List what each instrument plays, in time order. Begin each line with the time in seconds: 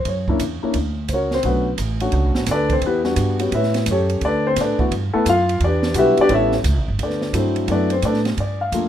0.05 upright bass F#2, grand piano C#5, kick, ride
0.28 grand piano A#3 C#4 D4 E4, kick
0.39 upright bass E2, kick, hi-hat pedal, ride
0.63 grand piano A#3 C#4 D4 E4, muted upright bass stroke
0.74 upright bass D2, kick, ride
1.08 upright bass C#2, grand piano C5, kick, hi-hat pedal, ride
1.13 grand piano C#4 F#4 A#4 C#5
1.31 grand piano C4 C5, snare
1.43 upright bass B1, grand piano A3 B3 C#4 D4 F#4 B4, kick, ride
1.78 upright bass A1, kick, hi-hat pedal, ride
2.00 grand piano A3 C#4 D4 F#4, ride
2.12 upright bass C#2, kick, ride
2.25 upright bass B1
2.35 upright bass A1, snare
2.46 upright bass D2, kick, snare, hi-hat pedal, ride
2.51 grand piano D4 A4 B4 D5
2.70 grand piano C4 C5, kick, ride
2.81 upright bass E2, kick, ride
2.86 grand piano B3 E4 G4 B4
3.04 grand piano G3 B3 D4 F#4, snare
3.16 upright bass G2, kick, hi-hat pedal, ride
3.39 grand piano G3 B3 C#4 F#4, ride
3.52 upright bass A2, grand piano E4 B4 C#5 E5, kick, ride
3.63 snare
3.74 snare, ride
3.86 upright bass F#2, kick, hi-hat pedal, ride
3.91 grand piano C#4 G4 A4 C#5
4.10 ride
4.21 upright bass D2, grand piano D4 D5, kick, ride
4.25 grand piano A4 B4
4.47 grand piano C4 C5
4.56 upright bass A2, kick, snare, hi-hat pedal, ride
4.61 grand piano D4 A4 B4 D5
4.79 grand piano A3 B3 E4 F#4, muted upright bass stroke, kick
4.91 upright bass G2, kick, ride
5.13 grand piano A3 B3 E4 A4, muted upright bass stroke
5.26 upright bass F#2, grand piano F4 F5, kick, hi-hat pedal, ride
5.49 ride
5.60 upright bass E2, kick, ride
5.64 grand piano D4 G4 B4 D5
5.83 snare
5.94 upright bass B1, grand piano G3 B3 D4 F#4 E5, kick, hi-hat pedal, ride
5.98 grand piano E4 G4 B4
6.17 grand piano D4 D5, muted upright bass stroke, ride
6.22 grand piano G4 B4
6.29 upright bass A1, grand piano G3 B3 C#4 E4, kick, ride
6.34 grand piano E4 A4 C#5 E5
6.52 snare
6.64 upright bass C#2, kick, hi-hat pedal, ride
6.77 upright bass A1
6.88 upright bass G1
6.99 upright bass D2, kick, ride
7.03 grand piano D4 A4 B4 D5
7.10 snare
7.22 snare
7.33 upright bass G2, grand piano F#3 A3 D4 E4, kick, hi-hat pedal, ride
7.38 grand piano C4 C5
7.56 ride
7.68 upright bass F#2, grand piano F#3 A3 B3 D4 E4 A4 D5, kick, ride
7.72 grand piano B4
7.90 grand piano C4 C5, ride
8.02 upright bass A2, grand piano D4 A4 B4 D5, kick, hi-hat pedal, ride
8.14 snare
8.25 snare, ride
8.37 upright bass G2, grand piano D5, kick, ride
8.61 grand piano F5
8.72 upright bass F2, grand piano A3 A#3 D4 F4, kick, hi-hat pedal, ride